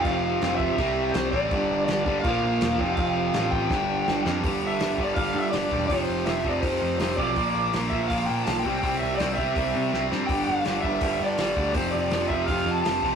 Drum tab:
CC |x-x-x-x-|x-x-x-x-|x-x-----|--------|
HH |--------|--------|--------|o-o-o-o-|
SD |--o---o-|--o---o-|--o-o-oo|--o---o-|
BD |o--oo--o|o--oo--o|o--oo---|o--oo--o|

CC |--------|--------|--------|--------|
HH |o-o-o-o-|o-o-o-o-|o-o-o---|o-o-o-o-|
SD |--o---o-|--o---o-|--o---oo|--o---o-|
BD |o--oo--o|o--oo--o|o--oo---|o--oo--o|

CC |--------|
HH |o-o-o-o-|
SD |--o---o-|
BD |o--oo--o|